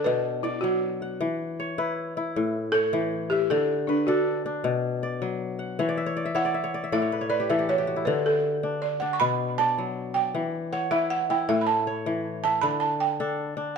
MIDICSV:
0, 0, Header, 1, 3, 480
1, 0, Start_track
1, 0, Key_signature, 2, "major"
1, 0, Tempo, 380711
1, 1519, Time_signature, 12, 3, 24, 8
1, 17370, End_track
2, 0, Start_track
2, 0, Title_t, "Balafon"
2, 0, Program_c, 0, 12
2, 55, Note_on_c, 0, 71, 98
2, 512, Note_off_c, 0, 71, 0
2, 544, Note_on_c, 0, 64, 77
2, 767, Note_on_c, 0, 66, 84
2, 798, Note_off_c, 0, 64, 0
2, 1935, Note_off_c, 0, 66, 0
2, 3429, Note_on_c, 0, 69, 114
2, 4107, Note_off_c, 0, 69, 0
2, 4159, Note_on_c, 0, 67, 102
2, 4409, Note_off_c, 0, 67, 0
2, 4416, Note_on_c, 0, 69, 101
2, 4858, Note_off_c, 0, 69, 0
2, 4883, Note_on_c, 0, 62, 69
2, 5108, Note_off_c, 0, 62, 0
2, 5129, Note_on_c, 0, 66, 86
2, 6278, Note_off_c, 0, 66, 0
2, 8017, Note_on_c, 0, 78, 101
2, 8738, Note_on_c, 0, 76, 99
2, 8754, Note_off_c, 0, 78, 0
2, 9199, Note_on_c, 0, 74, 88
2, 9228, Note_off_c, 0, 76, 0
2, 9427, Note_off_c, 0, 74, 0
2, 9451, Note_on_c, 0, 76, 82
2, 9673, Note_off_c, 0, 76, 0
2, 9701, Note_on_c, 0, 73, 90
2, 10152, Note_on_c, 0, 71, 91
2, 10189, Note_off_c, 0, 73, 0
2, 10383, Note_off_c, 0, 71, 0
2, 10413, Note_on_c, 0, 69, 87
2, 10857, Note_off_c, 0, 69, 0
2, 11118, Note_on_c, 0, 74, 82
2, 11347, Note_on_c, 0, 78, 89
2, 11371, Note_off_c, 0, 74, 0
2, 11514, Note_off_c, 0, 78, 0
2, 11514, Note_on_c, 0, 85, 79
2, 11596, Note_on_c, 0, 83, 113
2, 11605, Note_off_c, 0, 85, 0
2, 12080, Note_on_c, 0, 81, 101
2, 12096, Note_off_c, 0, 83, 0
2, 12753, Note_off_c, 0, 81, 0
2, 12787, Note_on_c, 0, 79, 95
2, 13466, Note_off_c, 0, 79, 0
2, 13523, Note_on_c, 0, 78, 80
2, 13632, Note_off_c, 0, 78, 0
2, 13755, Note_on_c, 0, 76, 101
2, 14000, Note_on_c, 0, 78, 93
2, 14008, Note_off_c, 0, 76, 0
2, 14249, Note_on_c, 0, 79, 82
2, 14250, Note_off_c, 0, 78, 0
2, 14470, Note_off_c, 0, 79, 0
2, 14484, Note_on_c, 0, 76, 100
2, 14641, Note_off_c, 0, 76, 0
2, 14642, Note_on_c, 0, 83, 68
2, 14709, Note_on_c, 0, 81, 97
2, 14728, Note_off_c, 0, 83, 0
2, 15385, Note_off_c, 0, 81, 0
2, 15680, Note_on_c, 0, 81, 93
2, 15905, Note_on_c, 0, 83, 99
2, 15928, Note_off_c, 0, 81, 0
2, 16136, Note_off_c, 0, 83, 0
2, 16140, Note_on_c, 0, 81, 85
2, 16395, Note_on_c, 0, 79, 90
2, 16398, Note_off_c, 0, 81, 0
2, 17370, Note_off_c, 0, 79, 0
2, 17370, End_track
3, 0, Start_track
3, 0, Title_t, "Kora"
3, 0, Program_c, 1, 46
3, 0, Note_on_c, 1, 50, 77
3, 0, Note_on_c, 1, 62, 67
3, 0, Note_on_c, 1, 71, 72
3, 77, Note_on_c, 1, 47, 85
3, 139, Note_off_c, 1, 50, 0
3, 551, Note_on_c, 1, 74, 74
3, 671, Note_off_c, 1, 71, 0
3, 802, Note_on_c, 1, 54, 71
3, 1285, Note_on_c, 1, 78, 59
3, 1520, Note_on_c, 1, 52, 77
3, 1582, Note_off_c, 1, 47, 0
3, 1582, Note_off_c, 1, 54, 0
3, 1948, Note_off_c, 1, 74, 0
3, 1952, Note_off_c, 1, 62, 0
3, 2012, Note_on_c, 1, 73, 70
3, 2245, Note_on_c, 1, 64, 74
3, 2249, Note_on_c, 1, 71, 63
3, 2501, Note_off_c, 1, 78, 0
3, 2730, Note_off_c, 1, 64, 0
3, 2735, Note_on_c, 1, 64, 69
3, 2980, Note_on_c, 1, 45, 78
3, 3025, Note_off_c, 1, 52, 0
3, 3451, Note_off_c, 1, 73, 0
3, 3456, Note_on_c, 1, 73, 63
3, 3693, Note_on_c, 1, 52, 82
3, 3799, Note_off_c, 1, 71, 0
3, 4183, Note_on_c, 1, 76, 56
3, 4424, Note_on_c, 1, 50, 88
3, 4468, Note_off_c, 1, 45, 0
3, 4468, Note_off_c, 1, 52, 0
3, 4499, Note_off_c, 1, 73, 0
3, 4711, Note_off_c, 1, 64, 0
3, 4901, Note_on_c, 1, 71, 75
3, 5142, Note_on_c, 1, 62, 78
3, 5144, Note_on_c, 1, 69, 66
3, 5486, Note_off_c, 1, 76, 0
3, 5614, Note_off_c, 1, 62, 0
3, 5619, Note_on_c, 1, 62, 72
3, 5851, Note_on_c, 1, 47, 80
3, 5910, Note_off_c, 1, 50, 0
3, 6341, Note_on_c, 1, 74, 66
3, 6451, Note_off_c, 1, 71, 0
3, 6577, Note_on_c, 1, 54, 72
3, 6805, Note_off_c, 1, 69, 0
3, 7047, Note_on_c, 1, 78, 56
3, 7300, Note_on_c, 1, 52, 86
3, 7306, Note_on_c, 1, 73, 76
3, 7351, Note_off_c, 1, 47, 0
3, 7351, Note_off_c, 1, 54, 0
3, 7382, Note_off_c, 1, 62, 0
3, 7382, Note_off_c, 1, 74, 0
3, 7423, Note_on_c, 1, 74, 76
3, 7532, Note_on_c, 1, 76, 70
3, 7640, Note_off_c, 1, 73, 0
3, 7645, Note_on_c, 1, 73, 76
3, 7721, Note_off_c, 1, 74, 0
3, 7774, Note_on_c, 1, 74, 73
3, 7880, Note_off_c, 1, 76, 0
3, 7885, Note_on_c, 1, 76, 71
3, 7999, Note_off_c, 1, 73, 0
3, 8001, Note_on_c, 1, 64, 75
3, 8004, Note_on_c, 1, 73, 67
3, 8080, Note_off_c, 1, 74, 0
3, 8132, Note_on_c, 1, 74, 73
3, 8244, Note_off_c, 1, 76, 0
3, 8249, Note_on_c, 1, 76, 63
3, 8263, Note_off_c, 1, 78, 0
3, 8362, Note_off_c, 1, 73, 0
3, 8367, Note_on_c, 1, 73, 74
3, 8443, Note_off_c, 1, 74, 0
3, 8502, Note_on_c, 1, 74, 73
3, 8614, Note_off_c, 1, 76, 0
3, 8619, Note_on_c, 1, 76, 59
3, 8727, Note_off_c, 1, 74, 0
3, 8729, Note_on_c, 1, 45, 84
3, 8732, Note_on_c, 1, 74, 70
3, 8792, Note_off_c, 1, 52, 0
3, 8808, Note_off_c, 1, 73, 0
3, 8850, Note_on_c, 1, 73, 58
3, 8979, Note_on_c, 1, 71, 68
3, 9085, Note_off_c, 1, 73, 0
3, 9090, Note_on_c, 1, 73, 66
3, 9166, Note_off_c, 1, 74, 0
3, 9195, Note_off_c, 1, 71, 0
3, 9200, Note_on_c, 1, 71, 73
3, 9327, Note_on_c, 1, 67, 62
3, 9451, Note_on_c, 1, 69, 66
3, 9454, Note_on_c, 1, 52, 83
3, 9564, Note_off_c, 1, 67, 0
3, 9569, Note_on_c, 1, 67, 66
3, 9693, Note_on_c, 1, 66, 69
3, 9807, Note_off_c, 1, 67, 0
3, 9812, Note_on_c, 1, 67, 67
3, 9921, Note_off_c, 1, 66, 0
3, 9922, Note_off_c, 1, 76, 0
3, 9926, Note_on_c, 1, 66, 62
3, 9977, Note_off_c, 1, 64, 0
3, 10040, Note_on_c, 1, 64, 58
3, 10173, Note_on_c, 1, 50, 89
3, 10232, Note_off_c, 1, 45, 0
3, 10232, Note_off_c, 1, 52, 0
3, 10249, Note_off_c, 1, 73, 0
3, 10750, Note_off_c, 1, 71, 0
3, 10885, Note_on_c, 1, 62, 71
3, 11112, Note_off_c, 1, 69, 0
3, 11363, Note_off_c, 1, 62, 0
3, 11368, Note_on_c, 1, 62, 70
3, 11593, Note_off_c, 1, 67, 0
3, 11609, Note_on_c, 1, 47, 72
3, 11672, Note_off_c, 1, 50, 0
3, 11769, Note_off_c, 1, 66, 0
3, 12016, Note_off_c, 1, 64, 0
3, 12093, Note_on_c, 1, 74, 72
3, 12336, Note_on_c, 1, 54, 77
3, 12806, Note_off_c, 1, 74, 0
3, 12811, Note_on_c, 1, 74, 55
3, 13043, Note_on_c, 1, 52, 74
3, 13110, Note_off_c, 1, 47, 0
3, 13110, Note_off_c, 1, 54, 0
3, 13486, Note_off_c, 1, 62, 0
3, 13524, Note_on_c, 1, 73, 77
3, 13600, Note_off_c, 1, 74, 0
3, 13756, Note_on_c, 1, 64, 74
3, 13756, Note_on_c, 1, 71, 61
3, 14242, Note_off_c, 1, 64, 0
3, 14247, Note_on_c, 1, 64, 74
3, 14483, Note_on_c, 1, 45, 80
3, 14548, Note_off_c, 1, 52, 0
3, 14961, Note_off_c, 1, 73, 0
3, 14966, Note_on_c, 1, 73, 66
3, 15208, Note_on_c, 1, 52, 76
3, 15306, Note_off_c, 1, 71, 0
3, 15691, Note_on_c, 1, 76, 62
3, 15924, Note_on_c, 1, 50, 87
3, 15986, Note_off_c, 1, 45, 0
3, 15986, Note_off_c, 1, 52, 0
3, 15999, Note_off_c, 1, 73, 0
3, 16222, Note_off_c, 1, 64, 0
3, 16641, Note_on_c, 1, 69, 65
3, 16642, Note_on_c, 1, 62, 73
3, 16994, Note_off_c, 1, 76, 0
3, 17101, Note_off_c, 1, 62, 0
3, 17106, Note_on_c, 1, 62, 70
3, 17370, Note_off_c, 1, 50, 0
3, 17370, Note_off_c, 1, 62, 0
3, 17370, Note_off_c, 1, 69, 0
3, 17370, End_track
0, 0, End_of_file